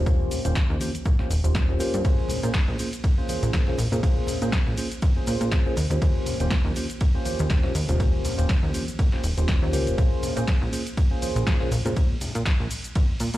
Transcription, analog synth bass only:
0.00 0.27 D#1 medium
0.45 0.53 D#1 medium
0.70 0.78 D#2 loud
1.06 1.16 A#1 loud
1.20 1.28 D#1 soft
1.30 1.41 D#1 medium
1.44 1.68 D#1 medium
1.69 1.77 D#1 loud
1.80 1.91 G2 soft
1.94 2.02 G2 medium
2.05 2.15 A#1 loud
2.43 2.51 A#2 medium
2.68 2.76 A#1 loud
3.43 3.51 A#1 medium
3.53 3.64 A#2 medium
3.78 3.88 A#1 medium
3.92 4.23 A#2 medium
4.42 4.50 A#2 medium
4.67 4.75 A#1 loud
5.03 5.13 F2 loud
5.16 5.25 A#2 soft
5.27 5.37 A#2 medium
5.41 5.72 A#2 medium
5.77 5.87 D#2 medium
5.90 5.98 D#2 medium
6.02 6.12 D#2 loud
6.40 6.48 D#1 medium
6.65 6.73 D#2 loud
7.40 7.48 D#2 medium
7.50 7.60 D#1 loud
7.75 7.85 D#2 medium
7.89 8.20 D#1 medium
8.38 8.47 D#1 medium
8.63 8.71 D#2 loud
8.99 9.09 A#1 loud
9.13 9.22 D#1 soft
9.24 9.34 D#1 medium
9.38 9.62 D#1 medium
9.63 9.75 D#2 loud
9.74 9.89 C#2 medium
9.87 9.95 D#1 medium
9.98 10.08 A#1 loud
10.37 10.45 A#2 medium
10.62 10.70 A#1 loud
11.36 11.44 A#1 loud
11.47 11.57 A#2 loud
11.72 11.82 A#1 medium
11.86 12.17 A#2 medium
12.35 12.43 A#2 medium
12.60 12.68 A#1 loud
12.96 13.06 F2 loud
13.09 13.18 A#2 soft
13.20 13.30 A#2 medium
13.34 13.38 A#2 medium

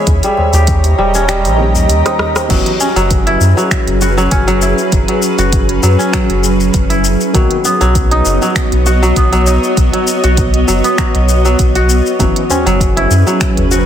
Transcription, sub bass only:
0.07 0.21 D#2 loud
0.53 0.94 D#2 medium
0.98 1.46 D#1 medium
1.45 1.90 A#1 medium
1.89 2.03 D#2 medium
2.50 2.64 F#1 loud
2.96 3.37 F#1 medium
3.40 3.54 F#2 medium
3.87 4.28 F#1 loud
4.32 4.74 F#1 medium
4.92 5.06 F#1 loud
5.38 5.79 F#1 medium
5.83 5.97 F#2 medium
6.29 6.70 F#1 medium
6.74 7.16 F#1 medium
7.35 7.48 B1 loud
7.81 8.22 B1 medium
8.26 8.39 F#1 medium
8.72 9.13 B1 medium
9.16 9.59 B1 medium
9.77 9.91 B1 loud
10.24 10.64 B1 medium
10.69 10.82 F#1 medium
11.15 11.55 B1 medium
11.59 12.01 B1 medium
12.20 12.33 F#1 loud
12.66 13.07 F#1 medium
13.10 13.24 F#2 medium
13.57 13.86 F#1 loud

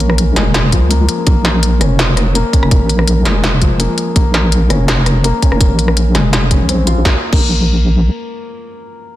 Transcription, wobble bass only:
0.00 0.38 A#1 medium
0.36 0.72 F1 loud
0.73 1.08 C#2 medium
1.27 1.83 A#1 medium
1.81 2.43 F1 loud
2.63 2.82 F1 medium
2.81 3.27 A#1 medium
3.26 3.88 F1 loud
4.16 4.72 A#1 medium
4.70 5.33 F1 loud
5.52 5.72 F1 medium
5.70 6.16 A#1 medium
6.15 6.62 F1 loud
6.60 6.71 C#2 loud
6.69 7.04 A#1 loud
7.05 7.15 A#1 medium
7.33 8.10 A#1 medium

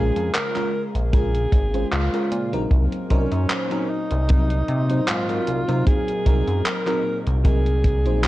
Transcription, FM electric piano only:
0.00 0.50 G#3 medium
0.00 0.50 C#4 medium
0.00 0.50 F4 medium
0.00 0.51 A#4 loud
0.55 0.69 G#3 medium
0.55 0.70 C#4 medium
0.55 0.70 F4 medium
0.55 0.70 A#4 loud
1.12 1.29 G#3 medium
1.12 1.30 C#4 medium
1.12 1.30 F4 medium
1.12 1.30 A#4 loud
1.73 2.08 G#3 medium
1.73 2.08 C#4 medium
1.73 2.08 F4 medium
1.73 2.09 C5 medium
2.13 2.47 G#3 medium
2.13 2.48 C#4 medium
2.13 2.48 F4 medium
2.13 2.48 A#4 medium
2.52 3.06 F#3 medium
2.52 3.06 C4 medium
2.52 3.06 D#4 medium
2.52 3.07 A#4 loud
3.10 3.66 F#3 medium
3.10 3.66 D#4 medium
3.10 3.67 A#4 loud
3.10 3.66 C5 medium
3.71 3.85 F#3 medium
3.71 3.85 C4 medium
3.71 3.86 D#4 medium
3.71 3.86 A#4 loud
4.28 4.45 F#3 medium
4.28 4.45 C4 medium
4.28 4.46 D#4 medium
4.28 4.46 A#4 loud
4.89 5.24 F#3 medium
4.89 5.24 C4 medium
4.89 5.24 D#4 medium
4.89 5.24 C5 medium
5.28 5.63 F#3 medium
5.28 5.63 C4 medium
5.28 5.64 D#4 medium
5.28 5.64 A#4 medium
5.67 6.21 F#3 medium
5.67 6.22 C4 medium
5.67 6.22 D#4 medium
5.67 6.22 A#4 loud
6.25 6.81 F#3 medium
6.25 6.82 C4 medium
6.25 6.82 D#4 medium
6.25 6.82 A#4 loud
6.86 7.01 F#3 medium
6.86 7.01 C4 medium
6.86 7.01 D#4 medium
6.86 7.02 A#4 loud
7.44 7.61 F#3 medium
7.44 7.61 C4 medium
7.44 7.62 D#4 medium
7.44 7.62 A#4 medium
8.05 8.28 F#3 medium
8.05 8.28 C4 medium
8.05 8.28 D#4 medium
8.05 8.28 C5 medium

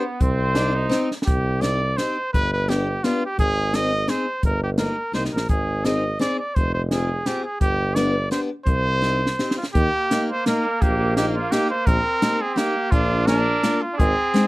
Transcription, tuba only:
0.20 0.90 C2 medium
1.27 1.97 C2 medium
2.34 3.02 G1 medium
3.38 4.06 G#1 medium
4.43 4.89 G1 medium
5.13 5.31 C2 medium
5.33 5.48 A#1 medium
5.49 6.19 G#1 medium
6.57 7.25 F1 medium
7.61 8.30 G1 medium
8.66 9.37 C2 medium
9.75 9.88 D#2 loud
10.82 11.50 A#1 medium
11.87 12.00 A#1 loud
12.92 13.62 A#1 medium
13.99 14.12 G#1 loud

